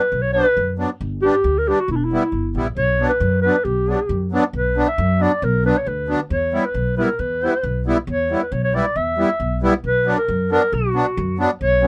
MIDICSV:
0, 0, Header, 1, 4, 480
1, 0, Start_track
1, 0, Tempo, 441826
1, 138, Time_signature, 2, 2, 24, 8
1, 12898, End_track
2, 0, Start_track
2, 0, Title_t, "Clarinet"
2, 0, Program_c, 0, 71
2, 0, Note_on_c, 0, 71, 91
2, 237, Note_on_c, 0, 73, 92
2, 253, Note_off_c, 0, 71, 0
2, 348, Note_off_c, 0, 73, 0
2, 355, Note_on_c, 0, 71, 102
2, 811, Note_off_c, 0, 71, 0
2, 1324, Note_on_c, 0, 67, 92
2, 1717, Note_on_c, 0, 70, 86
2, 1734, Note_off_c, 0, 67, 0
2, 1823, Note_on_c, 0, 67, 92
2, 1839, Note_off_c, 0, 70, 0
2, 1953, Note_on_c, 0, 66, 75
2, 1970, Note_off_c, 0, 67, 0
2, 2065, Note_off_c, 0, 66, 0
2, 2075, Note_on_c, 0, 64, 83
2, 2134, Note_on_c, 0, 62, 66
2, 2151, Note_off_c, 0, 64, 0
2, 2224, Note_on_c, 0, 64, 80
2, 2241, Note_off_c, 0, 62, 0
2, 2785, Note_off_c, 0, 64, 0
2, 3016, Note_on_c, 0, 73, 104
2, 3351, Note_off_c, 0, 73, 0
2, 3358, Note_on_c, 0, 71, 77
2, 3701, Note_off_c, 0, 71, 0
2, 3714, Note_on_c, 0, 71, 90
2, 3957, Note_on_c, 0, 67, 80
2, 3973, Note_off_c, 0, 71, 0
2, 4686, Note_off_c, 0, 67, 0
2, 4945, Note_on_c, 0, 71, 85
2, 5302, Note_on_c, 0, 76, 91
2, 5318, Note_off_c, 0, 71, 0
2, 5668, Note_on_c, 0, 74, 82
2, 5685, Note_off_c, 0, 76, 0
2, 5908, Note_on_c, 0, 70, 92
2, 5925, Note_off_c, 0, 74, 0
2, 6142, Note_off_c, 0, 70, 0
2, 6150, Note_on_c, 0, 71, 89
2, 6271, Note_on_c, 0, 73, 71
2, 6288, Note_off_c, 0, 71, 0
2, 6298, Note_off_c, 0, 73, 0
2, 6323, Note_on_c, 0, 73, 81
2, 6382, Note_on_c, 0, 71, 70
2, 6398, Note_off_c, 0, 73, 0
2, 6739, Note_off_c, 0, 71, 0
2, 6864, Note_on_c, 0, 73, 85
2, 7226, Note_on_c, 0, 71, 78
2, 7242, Note_off_c, 0, 73, 0
2, 7566, Note_off_c, 0, 71, 0
2, 7573, Note_on_c, 0, 70, 87
2, 7819, Note_on_c, 0, 71, 76
2, 7835, Note_off_c, 0, 70, 0
2, 8537, Note_off_c, 0, 71, 0
2, 8793, Note_on_c, 0, 73, 91
2, 9120, Note_off_c, 0, 73, 0
2, 9147, Note_on_c, 0, 71, 62
2, 9256, Note_on_c, 0, 73, 70
2, 9272, Note_off_c, 0, 71, 0
2, 9376, Note_off_c, 0, 73, 0
2, 9385, Note_on_c, 0, 73, 84
2, 9499, Note_on_c, 0, 74, 79
2, 9516, Note_off_c, 0, 73, 0
2, 9740, Note_on_c, 0, 76, 93
2, 9756, Note_off_c, 0, 74, 0
2, 10458, Note_off_c, 0, 76, 0
2, 10692, Note_on_c, 0, 71, 102
2, 11028, Note_off_c, 0, 71, 0
2, 11055, Note_on_c, 0, 70, 79
2, 11390, Note_off_c, 0, 70, 0
2, 11428, Note_on_c, 0, 70, 92
2, 11667, Note_on_c, 0, 66, 76
2, 11683, Note_off_c, 0, 70, 0
2, 12381, Note_off_c, 0, 66, 0
2, 12618, Note_on_c, 0, 73, 108
2, 12898, Note_off_c, 0, 73, 0
2, 12898, End_track
3, 0, Start_track
3, 0, Title_t, "Accordion"
3, 0, Program_c, 1, 21
3, 367, Note_on_c, 1, 54, 61
3, 376, Note_on_c, 1, 59, 50
3, 388, Note_on_c, 1, 62, 67
3, 492, Note_off_c, 1, 54, 0
3, 496, Note_off_c, 1, 59, 0
3, 503, Note_off_c, 1, 62, 0
3, 847, Note_on_c, 1, 54, 63
3, 858, Note_on_c, 1, 59, 59
3, 860, Note_on_c, 1, 62, 59
3, 972, Note_off_c, 1, 54, 0
3, 977, Note_off_c, 1, 59, 0
3, 979, Note_off_c, 1, 62, 0
3, 1341, Note_on_c, 1, 55, 67
3, 1348, Note_on_c, 1, 59, 58
3, 1362, Note_on_c, 1, 62, 76
3, 1459, Note_off_c, 1, 55, 0
3, 1462, Note_off_c, 1, 59, 0
3, 1470, Note_off_c, 1, 62, 0
3, 1818, Note_on_c, 1, 55, 66
3, 1826, Note_on_c, 1, 59, 58
3, 1840, Note_on_c, 1, 62, 66
3, 1937, Note_off_c, 1, 55, 0
3, 1941, Note_off_c, 1, 59, 0
3, 1948, Note_off_c, 1, 62, 0
3, 2303, Note_on_c, 1, 55, 67
3, 2313, Note_on_c, 1, 59, 55
3, 2320, Note_on_c, 1, 64, 74
3, 2420, Note_off_c, 1, 55, 0
3, 2425, Note_off_c, 1, 59, 0
3, 2428, Note_off_c, 1, 64, 0
3, 2775, Note_on_c, 1, 55, 60
3, 2787, Note_on_c, 1, 59, 61
3, 2798, Note_on_c, 1, 64, 65
3, 2896, Note_off_c, 1, 55, 0
3, 2902, Note_off_c, 1, 59, 0
3, 2907, Note_off_c, 1, 64, 0
3, 3254, Note_on_c, 1, 54, 60
3, 3263, Note_on_c, 1, 59, 55
3, 3273, Note_on_c, 1, 62, 68
3, 3375, Note_off_c, 1, 54, 0
3, 3380, Note_off_c, 1, 59, 0
3, 3385, Note_off_c, 1, 62, 0
3, 3745, Note_on_c, 1, 54, 55
3, 3752, Note_on_c, 1, 59, 66
3, 3765, Note_on_c, 1, 62, 72
3, 3861, Note_off_c, 1, 54, 0
3, 3864, Note_off_c, 1, 59, 0
3, 3871, Note_off_c, 1, 62, 0
3, 4211, Note_on_c, 1, 54, 57
3, 4223, Note_on_c, 1, 59, 59
3, 4229, Note_on_c, 1, 62, 61
3, 4334, Note_off_c, 1, 54, 0
3, 4340, Note_off_c, 1, 59, 0
3, 4343, Note_off_c, 1, 62, 0
3, 4689, Note_on_c, 1, 54, 67
3, 4703, Note_on_c, 1, 59, 76
3, 4718, Note_on_c, 1, 62, 89
3, 4813, Note_off_c, 1, 54, 0
3, 4819, Note_off_c, 1, 59, 0
3, 4827, Note_off_c, 1, 62, 0
3, 5167, Note_on_c, 1, 54, 64
3, 5179, Note_on_c, 1, 59, 57
3, 5190, Note_on_c, 1, 62, 73
3, 5292, Note_off_c, 1, 54, 0
3, 5298, Note_off_c, 1, 59, 0
3, 5303, Note_off_c, 1, 62, 0
3, 5636, Note_on_c, 1, 54, 64
3, 5649, Note_on_c, 1, 59, 57
3, 5665, Note_on_c, 1, 62, 71
3, 5766, Note_off_c, 1, 54, 0
3, 5773, Note_off_c, 1, 59, 0
3, 5781, Note_off_c, 1, 62, 0
3, 6130, Note_on_c, 1, 54, 66
3, 6143, Note_on_c, 1, 59, 61
3, 6151, Note_on_c, 1, 62, 69
3, 6253, Note_off_c, 1, 54, 0
3, 6260, Note_off_c, 1, 59, 0
3, 6264, Note_off_c, 1, 62, 0
3, 6604, Note_on_c, 1, 54, 57
3, 6613, Note_on_c, 1, 59, 58
3, 6625, Note_on_c, 1, 62, 70
3, 6730, Note_off_c, 1, 54, 0
3, 6734, Note_off_c, 1, 59, 0
3, 6740, Note_off_c, 1, 62, 0
3, 7088, Note_on_c, 1, 55, 58
3, 7101, Note_on_c, 1, 59, 50
3, 7104, Note_on_c, 1, 64, 69
3, 7212, Note_off_c, 1, 55, 0
3, 7218, Note_off_c, 1, 59, 0
3, 7220, Note_off_c, 1, 64, 0
3, 7575, Note_on_c, 1, 55, 60
3, 7589, Note_on_c, 1, 59, 62
3, 7596, Note_on_c, 1, 64, 68
3, 7696, Note_off_c, 1, 55, 0
3, 7702, Note_off_c, 1, 59, 0
3, 7706, Note_off_c, 1, 64, 0
3, 8067, Note_on_c, 1, 55, 61
3, 8076, Note_on_c, 1, 59, 61
3, 8088, Note_on_c, 1, 64, 69
3, 8181, Note_off_c, 1, 55, 0
3, 8186, Note_off_c, 1, 59, 0
3, 8192, Note_off_c, 1, 64, 0
3, 8538, Note_on_c, 1, 55, 67
3, 8546, Note_on_c, 1, 59, 61
3, 8559, Note_on_c, 1, 64, 84
3, 8657, Note_off_c, 1, 55, 0
3, 8661, Note_off_c, 1, 59, 0
3, 8667, Note_off_c, 1, 64, 0
3, 9018, Note_on_c, 1, 55, 58
3, 9028, Note_on_c, 1, 59, 58
3, 9039, Note_on_c, 1, 64, 62
3, 9137, Note_off_c, 1, 55, 0
3, 9142, Note_off_c, 1, 59, 0
3, 9147, Note_off_c, 1, 64, 0
3, 9489, Note_on_c, 1, 55, 61
3, 9500, Note_on_c, 1, 59, 61
3, 9508, Note_on_c, 1, 64, 77
3, 9612, Note_off_c, 1, 55, 0
3, 9618, Note_off_c, 1, 59, 0
3, 9622, Note_off_c, 1, 64, 0
3, 9965, Note_on_c, 1, 55, 64
3, 9975, Note_on_c, 1, 59, 61
3, 9993, Note_on_c, 1, 64, 73
3, 10090, Note_off_c, 1, 55, 0
3, 10095, Note_off_c, 1, 59, 0
3, 10105, Note_off_c, 1, 64, 0
3, 10451, Note_on_c, 1, 55, 80
3, 10464, Note_on_c, 1, 59, 70
3, 10467, Note_on_c, 1, 64, 94
3, 10573, Note_off_c, 1, 55, 0
3, 10580, Note_off_c, 1, 59, 0
3, 10581, Note_off_c, 1, 64, 0
3, 10921, Note_on_c, 1, 54, 59
3, 10932, Note_on_c, 1, 59, 59
3, 10943, Note_on_c, 1, 62, 72
3, 11049, Note_off_c, 1, 54, 0
3, 11054, Note_off_c, 1, 59, 0
3, 11060, Note_off_c, 1, 62, 0
3, 11407, Note_on_c, 1, 54, 72
3, 11419, Note_on_c, 1, 59, 59
3, 11431, Note_on_c, 1, 62, 78
3, 11531, Note_off_c, 1, 54, 0
3, 11537, Note_off_c, 1, 59, 0
3, 11543, Note_off_c, 1, 62, 0
3, 11886, Note_on_c, 1, 54, 61
3, 11890, Note_on_c, 1, 59, 54
3, 11905, Note_on_c, 1, 62, 73
3, 12011, Note_off_c, 1, 54, 0
3, 12013, Note_off_c, 1, 59, 0
3, 12021, Note_off_c, 1, 62, 0
3, 12363, Note_on_c, 1, 54, 79
3, 12368, Note_on_c, 1, 59, 75
3, 12386, Note_on_c, 1, 62, 84
3, 12490, Note_off_c, 1, 54, 0
3, 12492, Note_off_c, 1, 59, 0
3, 12501, Note_off_c, 1, 62, 0
3, 12833, Note_on_c, 1, 54, 56
3, 12848, Note_on_c, 1, 59, 61
3, 12857, Note_on_c, 1, 61, 73
3, 12898, Note_off_c, 1, 54, 0
3, 12898, Note_off_c, 1, 59, 0
3, 12898, Note_off_c, 1, 61, 0
3, 12898, End_track
4, 0, Start_track
4, 0, Title_t, "Upright bass"
4, 0, Program_c, 2, 32
4, 129, Note_on_c, 2, 35, 76
4, 419, Note_off_c, 2, 35, 0
4, 616, Note_on_c, 2, 42, 82
4, 904, Note_off_c, 2, 42, 0
4, 1092, Note_on_c, 2, 31, 82
4, 1382, Note_off_c, 2, 31, 0
4, 1566, Note_on_c, 2, 38, 89
4, 1857, Note_off_c, 2, 38, 0
4, 2043, Note_on_c, 2, 28, 80
4, 2335, Note_off_c, 2, 28, 0
4, 2521, Note_on_c, 2, 31, 71
4, 2744, Note_off_c, 2, 31, 0
4, 2766, Note_on_c, 2, 34, 70
4, 2987, Note_off_c, 2, 34, 0
4, 3004, Note_on_c, 2, 35, 77
4, 3295, Note_off_c, 2, 35, 0
4, 3481, Note_on_c, 2, 42, 89
4, 3773, Note_off_c, 2, 42, 0
4, 3964, Note_on_c, 2, 35, 75
4, 4255, Note_off_c, 2, 35, 0
4, 4446, Note_on_c, 2, 42, 85
4, 4737, Note_off_c, 2, 42, 0
4, 4925, Note_on_c, 2, 35, 82
4, 5216, Note_off_c, 2, 35, 0
4, 5412, Note_on_c, 2, 42, 96
4, 5701, Note_off_c, 2, 42, 0
4, 5890, Note_on_c, 2, 35, 92
4, 6180, Note_off_c, 2, 35, 0
4, 6371, Note_on_c, 2, 38, 83
4, 6661, Note_off_c, 2, 38, 0
4, 6848, Note_on_c, 2, 40, 89
4, 7139, Note_off_c, 2, 40, 0
4, 7326, Note_on_c, 2, 35, 77
4, 7617, Note_off_c, 2, 35, 0
4, 7811, Note_on_c, 2, 40, 79
4, 8101, Note_off_c, 2, 40, 0
4, 8294, Note_on_c, 2, 35, 82
4, 8582, Note_off_c, 2, 35, 0
4, 8769, Note_on_c, 2, 40, 83
4, 9059, Note_off_c, 2, 40, 0
4, 9252, Note_on_c, 2, 35, 86
4, 9541, Note_off_c, 2, 35, 0
4, 9730, Note_on_c, 2, 40, 81
4, 10020, Note_off_c, 2, 40, 0
4, 10209, Note_on_c, 2, 35, 80
4, 10499, Note_off_c, 2, 35, 0
4, 10687, Note_on_c, 2, 35, 73
4, 10978, Note_off_c, 2, 35, 0
4, 11173, Note_on_c, 2, 42, 85
4, 11462, Note_off_c, 2, 42, 0
4, 11651, Note_on_c, 2, 35, 81
4, 11940, Note_off_c, 2, 35, 0
4, 12140, Note_on_c, 2, 42, 93
4, 12426, Note_off_c, 2, 42, 0
4, 12610, Note_on_c, 2, 35, 82
4, 12898, Note_off_c, 2, 35, 0
4, 12898, End_track
0, 0, End_of_file